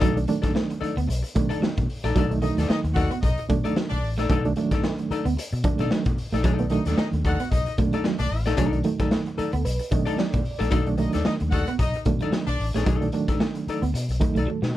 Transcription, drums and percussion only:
0.02 kick medium
0.02 closed hi-hat medium
0.17 closed hi-hat medium
0.28 closed hi-hat medium
0.43 kick medium
0.43 snare soft
0.43 closed hi-hat medium
0.56 snare loud
0.70 closed hi-hat medium
0.83 closed hi-hat medium
0.97 closed hi-hat medium
1.10 closed hi-hat medium
1.24 closed hi-hat medium
1.35 kick medium
1.35 closed hi-hat medium
1.51 closed hi-hat medium
1.63 snare loud
1.77 kick medium
1.77 closed hi-hat soft
1.89 open hi-hat medium
2.04 snare soft
2.04 closed hi-hat soft
2.16 kick loud
2.16 closed hi-hat medium
2.31 closed hi-hat soft
2.42 closed hi-hat medium
2.58 snare soft
2.58 closed hi-hat medium
2.70 snare loud
2.85 closed hi-hat medium
2.96 kick loud
2.96 closed hi-hat medium
3.11 closed hi-hat soft
3.23 kick medium
3.23 closed hi-hat medium
3.38 closed hi-hat medium
3.49 kick loud
3.49 closed hi-hat medium
3.65 closed hi-hat medium
3.76 snare loud
3.91 closed hi-hat soft
4.04 open hi-hat medium
4.18 snare soft
4.18 closed hi-hat medium
4.29 kick loud
4.29 closed hi-hat medium
4.45 closed hi-hat soft
4.56 closed hi-hat medium
4.71 kick medium
4.71 snare soft
4.71 closed hi-hat medium
4.84 snare loud
4.98 closed hi-hat soft
5.11 closed hi-hat medium
5.25 closed hi-hat medium
5.38 closed hi-hat medium
5.52 closed hi-hat soft
5.64 kick loud
5.64 closed hi-hat medium
5.79 closed hi-hat medium
5.91 snare medium
6.05 kick loud
6.05 closed hi-hat soft
6.18 open hi-hat medium
6.33 snare soft
6.33 closed hi-hat soft
6.44 kick loud
6.44 closed hi-hat medium
6.59 closed hi-hat soft
6.70 closed hi-hat medium
6.85 snare soft
6.85 closed hi-hat medium
6.98 snare loud
7.13 closed hi-hat soft
7.25 kick loud
7.25 closed hi-hat medium
7.40 closed hi-hat medium
7.52 kick medium
7.52 closed hi-hat medium
7.66 closed hi-hat medium
7.78 kick loud
7.78 closed hi-hat medium
7.93 closed hi-hat medium
8.04 snare medium
8.18 closed hi-hat soft
8.31 open hi-hat medium
8.46 snare soft
8.46 closed hi-hat medium
8.57 kick loud
8.57 closed hi-hat medium
8.73 closed hi-hat soft
8.84 closed hi-hat medium
8.99 kick medium
8.99 snare soft
8.99 closed hi-hat medium
9.11 snare loud
9.26 closed hi-hat soft
9.39 closed hi-hat medium
9.52 closed hi-hat medium
9.65 closed hi-hat medium
9.79 closed hi-hat medium
9.91 kick loud
9.91 closed hi-hat medium
10.06 closed hi-hat medium
10.19 snare loud
10.33 kick medium
10.33 closed hi-hat soft
10.45 open hi-hat medium
10.60 snare soft
10.60 closed hi-hat soft
10.71 kick loud
10.71 closed hi-hat medium
10.86 closed hi-hat medium
10.98 closed hi-hat medium
11.12 snare soft
11.12 closed hi-hat medium
11.25 snare loud
11.40 closed hi-hat medium
11.52 kick medium
11.52 closed hi-hat medium
11.67 closed hi-hat medium
11.79 kick medium
11.79 closed hi-hat medium
11.93 closed hi-hat medium
12.05 kick loud
12.05 closed hi-hat medium
12.20 closed hi-hat medium
12.32 snare medium
12.47 closed hi-hat soft
12.60 open hi-hat medium
12.75 snare soft
12.75 closed hi-hat soft
12.86 kick loud
12.86 closed hi-hat medium
13.02 closed hi-hat soft
13.12 closed hi-hat medium
13.28 kick medium
13.28 snare soft
13.28 closed hi-hat medium
13.40 snare loud
13.55 closed hi-hat medium
13.68 closed hi-hat medium
13.82 closed hi-hat medium
13.95 closed hi-hat medium
14.09 closed hi-hat medium
14.21 kick loud
14.21 closed hi-hat medium
14.36 closed hi-hat medium
14.63 snare medium

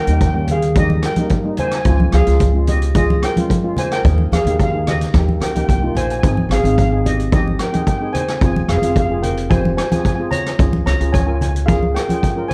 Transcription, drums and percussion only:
0.07 closed hi-hat medium
0.21 kick loud
0.21 closed hi-hat medium
0.47 closed hi-hat medium
0.47 low conga medium
0.62 closed hi-hat medium
0.75 kick loud
0.75 closed hi-hat medium
0.75 high conga medium
0.90 high conga medium
1.02 cross-stick medium
1.02 closed hi-hat medium
1.16 closed hi-hat medium
1.16 high conga medium
1.29 kick medium
1.29 closed hi-hat medium
1.57 closed hi-hat medium
1.57 low conga medium
1.71 cross-stick medium
1.71 closed hi-hat medium
1.85 kick loud
1.85 closed hi-hat medium
2.00 high conga medium
2.12 cross-stick medium
2.12 closed hi-hat medium
2.27 closed hi-hat medium
2.40 kick medium
2.40 closed hi-hat medium
2.67 closed hi-hat medium
2.67 low conga medium
2.82 closed hi-hat medium
2.95 kick loud
2.95 closed hi-hat medium
2.95 high conga medium
3.10 high conga medium
3.23 cross-stick medium
3.23 closed hi-hat medium
3.37 closed hi-hat medium
3.37 high conga medium
3.50 kick medium
3.50 closed hi-hat medium
3.77 closed hi-hat medium
3.77 low conga medium
3.91 cross-stick medium
3.91 closed hi-hat medium
4.05 kick loud
4.05 closed hi-hat medium
4.18 high conga medium
4.32 cross-stick medium
4.32 closed hi-hat medium
4.32 high conga medium
4.47 closed hi-hat medium
4.47 low conga medium
4.59 kick medium
4.59 closed hi-hat medium
4.87 cross-stick medium
4.87 closed hi-hat medium
4.87 low conga medium
5.01 closed hi-hat medium
5.14 kick loud
5.14 cross-stick medium
5.14 closed hi-hat medium
5.14 high conga medium
5.29 high conga medium
5.41 cross-stick medium
5.41 closed hi-hat medium
5.56 closed hi-hat medium
5.56 high conga medium
5.69 kick medium
5.69 closed hi-hat medium
5.96 closed hi-hat medium
5.96 low conga medium
6.10 closed hi-hat medium
6.23 kick loud
6.23 closed hi-hat medium
6.37 high conga medium
6.51 cross-stick medium
6.51 closed hi-hat medium
6.65 closed hi-hat medium
6.78 kick medium
6.78 closed hi-hat medium
7.06 closed hi-hat medium
7.06 low conga medium
7.20 closed hi-hat medium
7.32 kick loud
7.32 closed hi-hat medium
7.32 high conga medium
7.47 high conga medium
7.59 cross-stick medium
7.59 closed hi-hat medium
7.74 closed hi-hat medium
7.74 high conga medium
7.87 kick medium
7.87 closed hi-hat medium
8.15 closed hi-hat medium
8.15 low conga medium
8.28 cross-stick medium
8.28 closed hi-hat medium
8.41 kick loud
8.41 closed hi-hat medium
8.56 high conga medium
8.69 cross-stick medium
8.69 closed hi-hat medium
8.83 closed hi-hat medium
8.96 kick medium
8.96 closed hi-hat medium
9.23 closed hi-hat medium
9.23 low conga medium
9.37 closed hi-hat medium
9.51 kick loud
9.51 closed hi-hat medium
9.51 high conga medium
9.65 high conga medium
9.78 cross-stick medium
9.78 closed hi-hat medium
9.92 closed hi-hat medium
9.92 high conga medium
10.05 kick medium
10.05 closed hi-hat medium
10.31 closed hi-hat medium
10.31 low conga medium
10.46 cross-stick medium
10.46 closed hi-hat medium
10.59 kick loud
10.59 closed hi-hat medium
10.73 high conga medium
10.87 cross-stick medium
10.87 closed hi-hat medium
11.01 closed hi-hat medium
11.14 kick medium
11.14 closed hi-hat medium
11.41 closed hi-hat medium
11.41 low conga medium
11.56 closed hi-hat medium
11.68 kick loud
11.68 closed hi-hat medium
11.68 high conga medium
11.83 high conga medium
11.96 cross-stick medium
11.96 closed hi-hat medium
12.09 closed hi-hat medium
12.09 high conga medium
12.23 kick medium
12.23 closed hi-hat medium
12.51 closed hi-hat medium
12.51 low conga medium

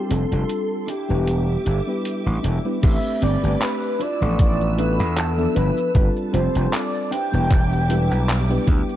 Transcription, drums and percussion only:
0.11 closed hi-hat medium
0.32 closed hi-hat soft
0.49 closed hi-hat medium
0.88 closed hi-hat medium
1.27 closed hi-hat medium
1.66 closed hi-hat medium
2.05 closed hi-hat medium
2.44 closed hi-hat medium
2.83 kick loud
2.83 closed hi-hat medium
2.83 crash loud
2.83 cabasa medium
3.05 cabasa soft
3.22 closed hi-hat medium
3.44 cabasa medium
3.61 clap loud
3.61 closed hi-hat medium
3.61 cabasa soft
3.83 cabasa soft
4.01 closed hi-hat medium
4.22 cabasa medium
4.39 kick loud
4.39 closed hi-hat medium
4.39 cabasa soft
4.61 cabasa soft
4.78 closed hi-hat medium
5.00 cabasa medium
5.17 clap loud
5.17 closed hi-hat medium
5.17 cabasa soft
5.39 cabasa soft
5.56 closed hi-hat medium
5.78 cabasa medium
5.95 kick loud
5.95 closed hi-hat medium
5.95 cabasa soft
6.16 cabasa soft
6.34 closed hi-hat medium
6.55 closed hi-hat soft
6.55 cabasa medium
6.73 clap loud
6.73 closed hi-hat medium
6.73 cabasa soft
6.95 cabasa soft
7.12 closed hi-hat medium
7.34 cabasa medium
7.51 kick loud
7.51 clap medium
7.51 closed hi-hat medium
7.51 cabasa soft
7.73 cabasa soft
7.90 closed hi-hat medium
8.11 cabasa medium
8.29 clap loud
8.29 closed hi-hat medium
8.29 cabasa soft
8.50 cabasa soft
8.67 kick loud
8.67 closed hi-hat medium
8.89 cabasa soft

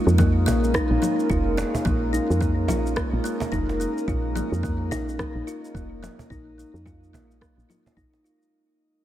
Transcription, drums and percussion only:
0.08 shaker soft
0.19 kick loud
0.19 low conga medium
0.19 shaker soft
0.48 cajon bass medium
0.48 shaker medium
0.64 shaker soft
0.74 kick medium
0.74 cross-stick medium
0.74 shaker soft
1.02 low conga medium
1.02 shaker medium
1.20 shaker soft
1.30 kick medium
1.30 shaker soft
1.58 cajon slap medium
1.58 shaker medium
1.74 cajon bass medium
1.74 shaker soft
1.86 kick loud
1.86 low conga medium
1.86 shaker soft
2.14 shaker medium
2.31 shaker soft
2.41 kick loud
2.41 shaker soft
2.68 cajon bass medium
2.68 cajon slap medium
2.68 low conga medium
2.68 shaker medium
2.86 shaker soft
2.97 kick loud
2.97 cross-stick medium
2.97 shaker soft
3.25 shaker medium
3.40 cajon bass medium
3.40 cajon slap medium
3.40 shaker soft
3.52 kick medium
3.52 low conga medium
3.52 shaker soft
3.69 cajon slap medium
3.81 shaker medium
3.98 shaker soft
4.08 kick loud
4.08 shaker soft
4.36 low conga medium
4.36 shaker medium
4.53 shaker soft
4.63 kick loud
4.63 shaker soft
4.92 cajon bass medium
4.92 shaker medium
5.09 shaker soft
5.19 kick loud
5.19 cross-stick medium
5.19 low conga medium
5.19 shaker soft
5.48 shaker medium
5.65 shaker soft
5.75 kick medium
5.75 shaker soft
6.03 cajon slap medium
6.03 low conga medium
6.03 shaker medium
6.19 cajon bass medium
6.19 shaker soft
6.30 kick loud
6.30 shaker soft
6.59 shaker medium
6.76 shaker soft
6.86 kick loud
6.86 low conga medium
6.86 shaker soft
7.04 shaker soft
7.14 cajon bass medium
7.14 cajon slap medium
7.14 shaker medium
7.31 shaker soft
7.42 kick medium
7.42 cross-stick medium
7.42 shaker soft
7.59 shaker soft
7.70 low conga medium
7.70 shaker medium
7.86 cajon bass medium
7.86 cajon slap medium
7.86 shaker soft
7.97 kick medium
7.97 shaker soft
8.13 cajon slap medium
8.26 shaker medium
8.42 shaker soft

